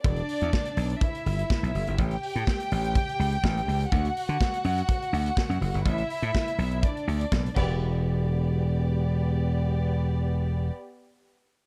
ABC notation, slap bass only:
X:1
M:4/4
L:1/16
Q:1/4=124
K:Em
V:1 name="Slap bass" clef=bass
E,,,2 z E,, z2 B,,,2 z2 G,,,2 z B,,, F,,, G,,, | A,,,2 z A,, z2 A,,,3 z ^C,,2 A,,,2 C,,2 | D,,2 z D, z2 F,,2 z2 D,,2 z F,, F,,, G,,, | A,,,2 z A,, z2 B,,,3 z D,,2 B,,,2 E,,,2- |
E,,,16- | E,,,16 |]